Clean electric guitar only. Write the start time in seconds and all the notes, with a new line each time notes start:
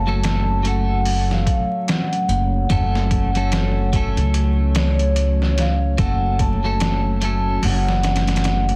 0.07 F#3 A3 C#4 A4
0.63 F#3 A3 C#4 A4
2.70 F#3 A3 C#4 A4
3.36 F#3 A3 C#4 A4
3.93 F#3 A3 C#4 A4
5.98 F#3 A3 C#4 A4
6.64 F#3 A3 C#4 A4
7.21 F#3 A3 C#4 A4